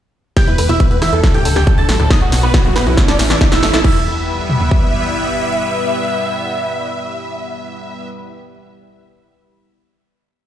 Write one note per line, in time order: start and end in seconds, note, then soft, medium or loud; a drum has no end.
0.37 0.41 E3 medium
0.37 0.46 G4 medium
0.37 0.46 G5 medium
0.37 0.46 G6 loud
0.37 kick loud
0.37 snare soft
0.37 closed hi-hat medium
0.37 riser medium
0.47 0.56 E2 medium
0.47 0.54 E4 medium
0.47 0.57 B4 medium
0.47 0.57 B5 medium
0.47 closed hi-hat soft
0.58 0.67 E2 loud
0.58 0.62 A3 medium
0.58 0.67 B4 medium
0.58 0.67 B5 medium
0.58 open hi-hat loud
0.69 0.78 E2 medium
0.69 0.73 B2 loud
0.69 0.78 E4 medium
0.69 0.78 E5 loud
0.69 0.78 E6 medium
0.69 closed hi-hat soft
0.80 0.84 D3 medium
0.80 0.89 B4 medium
0.80 kick loud
0.80 closed hi-hat medium
0.91 1.00 E2 medium
0.91 0.95 B3 medium
0.91 1.00 B4 medium
0.91 1.00 B5 medium
0.91 closed hi-hat soft
1.02 1.11 E1 medium
1.02 1.06 E3 medium
1.02 1.11 E4 medium
1.02 1.11 E5 medium
1.02 1.11 E6 loud
1.02 cross-stick medium
1.02 snare medium
1.02 open hi-hat loud
1.13 1.21 E2 medium
1.13 1.19 E4 medium
1.13 1.22 A4 medium
1.13 1.22 A5 medium
1.13 closed hi-hat soft
1.23 1.28 F#3 medium
1.23 1.33 A4 medium
1.23 1.33 A5 medium
1.23 kick loud
1.23 snare medium
1.23 closed hi-hat medium
1.34 1.43 D2 medium
1.34 1.38 A2 loud
1.34 1.43 G4 medium
1.34 1.43 G5 medium
1.34 1.43 G6 medium
1.34 closed hi-hat soft
1.45 1.54 D2 loud
1.45 1.49 C#3 medium
1.45 1.54 A4 medium
1.45 1.54 A5 medium
1.45 open hi-hat loud
1.56 1.65 D2 medium
1.56 1.60 A3 medium
1.56 1.65 G4 medium
1.56 1.65 G5 medium
1.56 1.65 G6 medium
1.56 cross-stick medium
1.56 snare medium
1.56 closed hi-hat soft
1.67 1.71 D3 medium
1.67 1.76 A4 medium
1.67 1.76 A5 medium
1.67 kick loud
1.67 closed hi-hat medium
1.78 1.87 D2 medium
1.78 1.84 D4 medium
1.78 1.87 A4 medium
1.78 1.87 A5 medium
1.78 1.87 A6 medium
1.78 closed hi-hat soft
1.89 1.98 A1 medium
1.89 1.93 F#3 medium
1.89 1.98 A4 medium
1.89 1.98 A5 medium
1.89 snare medium
1.89 open hi-hat loud
2.00 2.08 D2 medium
2.00 2.04 A2 loud
2.00 2.09 A4 medium
2.00 2.09 A5 medium
2.00 cross-stick medium
2.00 closed hi-hat soft
2.10 2.15 A2 medium
2.10 2.19 D#4 medium
2.10 2.20 D#5 loud
2.10 2.20 D#6 loud
2.10 kick loud
2.10 snare medium
2.10 closed hi-hat medium
2.21 2.30 B1 medium
2.21 2.25 F#3 medium
2.21 2.30 F#4 medium
2.21 2.30 F#5 medium
2.21 closed hi-hat soft
2.32 2.41 B1 loud
2.32 2.36 B2 medium
2.32 2.41 F#4 medium
2.32 2.41 F#5 medium
2.32 snare medium
2.32 open hi-hat loud
2.43 2.52 B1 medium
2.43 2.49 B3 medium
2.43 2.52 B3 medium
2.43 2.52 B4 loud
2.43 2.52 B5 medium
2.43 closed hi-hat soft
2.54 2.58 D#3 medium
2.54 2.63 F#4 medium
2.54 2.63 F#5 medium
2.54 kick loud
2.54 snare medium
2.54 closed hi-hat medium
2.65 2.74 B1 medium
2.65 2.69 F#2 loud
2.65 2.74 F#4 medium
2.65 2.74 F#5 medium
2.65 closed hi-hat soft
2.76 2.85 F#1 loud
2.76 2.80 A2 medium
2.76 2.85 B3 medium
2.76 2.85 B4 medium
2.76 2.85 B5 loud
2.76 snare medium
2.76 open hi-hat loud
2.87 2.95 B1 medium
2.87 2.91 F#3 medium
2.87 2.96 E4 medium
2.87 2.96 E5 medium
2.87 closed hi-hat soft
2.97 3.01 A3 medium
2.97 3.06 E4 medium
2.97 kick loud
2.97 snare medium
2.97 closed hi-hat medium
3.08 3.17 A1 medium
3.08 3.17 D4 medium
3.08 3.14 A4 medium
3.08 3.17 D5 loud
3.08 3.17 D6 medium
3.08 snare medium
3.08 closed hi-hat soft
3.19 3.28 A1 loud
3.19 3.23 C#4 medium
3.19 3.28 E4 medium
3.19 3.28 E5 medium
3.19 snare loud
3.19 open hi-hat loud
3.30 3.39 A1 medium
3.30 3.34 E3 loud
3.30 3.39 D4 medium
3.30 3.39 D5 medium
3.30 3.39 D6 medium
3.30 snare medium
3.41 3.45 G3 medium
3.41 3.50 E4 medium
3.41 3.50 E5 medium
3.41 kick loud
3.41 snare loud
3.41 closed hi-hat medium
3.52 3.61 A1 medium
3.52 3.61 E4 medium
3.52 3.56 E4 medium
3.52 3.61 E5 loud
3.52 3.61 E6 loud
3.52 snare medium
3.52 closed hi-hat soft
3.63 3.72 G1 loud
3.63 3.67 A3 medium
3.63 3.72 E4 medium
3.63 3.72 E5 medium
3.63 snare loud
3.63 open hi-hat loud
3.73 3.82 A1 medium
3.73 3.83 E4 medium
3.73 3.80 A4 medium
3.73 3.83 E5 medium
3.73 snare medium
3.84 5.11 E2 medium
3.84 4.05 E3 loud
3.84 8.08 G3 medium
3.84 8.08 B3 medium
3.84 8.08 E4 medium
3.84 8.08 B4 medium
3.84 8.08 E5 loud
3.84 8.49 E6 loud
3.84 kick loud
3.84 crash medium
4.50 mid tom medium
4.61 floor tom medium
4.71 kick medium